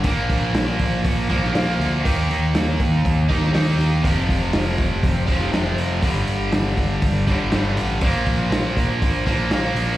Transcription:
0.04 A#1 A#2 F3 A#3, kick, open hi-hat
0.30 A#1, kick, open hi-hat
0.53 A#1, snare, open hi-hat
0.79 A#1, kick, open hi-hat
1.04 A#1, kick, open hi-hat
1.29 A#1 A#2 F3 A#3, kick, open hi-hat
1.43 snare
1.52 A#1 A#2 F3 A#3, snare, open hi-hat
1.79 D2, open hi-hat
2.03 D#2 D#3 A#3 D#4, kick, open hi-hat
2.30 D#2, open hi-hat
2.55 D#2, snare, open hi-hat
2.80 D#2, kick, open hi-hat
3.05 D#2, kick, open hi-hat
3.28 D#2 D#3 A#3 D#4, kick, snare, open hi-hat
3.43 snare
3.51 D#2 D#3 A#3 D#4, snare, open hi-hat
3.78 D#2, open hi-hat
4.03 F1 F2 C3 F3, kick, open hi-hat
4.29 F1, kick, open hi-hat
4.53 F1, snare, open hi-hat
4.78 F1, kick, open hi-hat
5.03 F1, kick, open hi-hat
5.26 F1 F2 C3 F3, kick, snare, open hi-hat
5.41 snare
5.51 F1 F2 C3 F3, snare, open hi-hat
5.77 F1, open hi-hat
6.01 G1 G2 D3 G3, kick, open hi-hat
6.27 G1, open hi-hat
6.52 G1, snare, open hi-hat
6.77 G1, kick, open hi-hat
7.02 G1, kick, open hi-hat
7.27 G1 G2 D3 G3, kick, snare, open hi-hat
7.52 G1 G2 D3 G3, snare, open hi-hat
7.77 A1, open hi-hat
8.01 A#1 A#2 F3 A#3, kick, open hi-hat
8.26 A#1, kick, open hi-hat
8.51 A#1, snare, open hi-hat
8.77 A#1, kick, open hi-hat
9.02 A#1, kick, open hi-hat
9.26 A#1 A#2 F3 A#3, kick, snare, open hi-hat
9.50 A#1 A#2 F3 A#3, snare, open hi-hat
9.74 A#1, open hi-hat

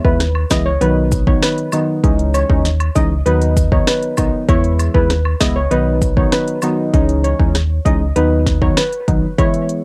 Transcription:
0.05 D#2 E3 G#3 B3 E4 B4, kick
0.20 cross-stick, snare, closed hi-hat
0.35 high woodblock
0.50 C#2 E3 G#3 B3 E4 D#5, kick, cross-stick, snare, closed hi-hat, cabasa
0.66 C#5
0.81 B1 D#3 F#3 B3 D#4 B4, closed hi-hat
1.12 kick, closed hi-hat, cabasa
1.27 D#3 F#3 B3 D#4 C#5, kick
1.42 B4, cross-stick, snare, closed hi-hat
1.58 closed hi-hat
1.72 D#3 F#3 B3 D#4, closed hi-hat, cabasa, high woodblock
2.03 C#2 E3 G#3 C#4 D#4, kick, closed hi-hat
2.19 closed hi-hat
2.34 C#5, closed hi-hat, cabasa, high woodblock
2.49 D#2 E3 G#3 C#4 D#4, kick
2.65 snare, closed hi-hat
2.80 closed hi-hat, high woodblock
2.95 C#2 E3 G#3 C#4 D#4 D#5, kick, closed hi-hat, cabasa
3.26 D#2 D#3 F#3 B3 D#4 B4, closed hi-hat
3.42 closed hi-hat
3.57 kick, closed hi-hat, cabasa
3.72 D#3 F#3 B3 D#4 C#5, kick
3.87 B4, cross-stick, snare, closed hi-hat
4.03 closed hi-hat
4.17 B1 D#3 F#3 B3 D#4, kick, closed hi-hat, cabasa, high woodblock
4.48 E2 E3 G#3 B3 E4 C#5, kick, closed hi-hat
4.64 closed hi-hat
4.79 closed hi-hat, cabasa, high woodblock
4.94 D#2 E3 G#3 B3 E4 B4, kick
5.10 cross-stick, snare, closed hi-hat
5.25 high woodblock
5.40 C#2 E3 G#3 B3 E4 D#5, kick, cross-stick, snare, closed hi-hat, cabasa
5.56 C#5
5.70 B1 D#3 F#3 B3 D#4 B4, closed hi-hat
6.02 kick, closed hi-hat, cabasa
6.17 D#3 F#3 B3 D#4 C#5, kick
6.32 B4, cross-stick, snare, closed hi-hat
6.48 closed hi-hat
6.62 D#3 F#3 B3 D#4, closed hi-hat, cabasa, high woodblock
6.93 C#2 E3 G#3 C#4 D#4, kick, closed hi-hat
7.09 closed hi-hat
7.24 C#5, closed hi-hat
7.39 D#2 E3 G#3 C#4 D#4, kick
7.55 cross-stick, snare, closed hi-hat
7.85 C#2 E3 G#3 C#4 D#4 D#5, kick, closed hi-hat
8.16 D#2 D#3 F#3 B3 D#4 B4, closed hi-hat
8.47 kick, snare, closed hi-hat
8.62 D#3 F#3 B3 D#4 C#5, kick
8.77 B4, cross-stick, snare, closed hi-hat
8.93 closed hi-hat
9.08 B1 D#3 F#3 B3 D#4, kick, closed hi-hat
9.38 E3 G#3 B3 E4 C#5, kick, closed hi-hat
9.54 closed hi-hat
9.69 closed hi-hat

